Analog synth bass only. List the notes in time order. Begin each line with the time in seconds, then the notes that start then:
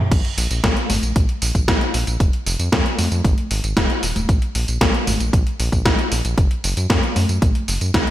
0.12 A#1
0.38 A#1
0.51 A#1
0.64 A#1
0.90 G#1
1.03 A#1
1.16 A#1
1.42 A#1
1.55 A#1
1.68 A#1
1.94 A#1
2.07 A#1
2.20 F1
2.46 F1
2.59 F2
2.72 F2
2.99 F2
3.12 F2
3.25 G#1
3.51 G#1
3.64 G#1
3.77 D#1
4.03 D#1
4.16 D#1
4.29 A#1
4.55 A#1
4.68 A#1
4.81 A#1
5.07 G#1
5.20 A#1
5.33 A#1
5.60 A#1
5.72 A#1
5.85 A#1
6.12 A#1
6.25 A#1
6.38 F#1
6.64 F#1
6.77 F#2
6.90 F#2
7.16 F#2
7.29 F#2
7.42 A#1
7.68 F#1
7.81 F#2
7.94 C#2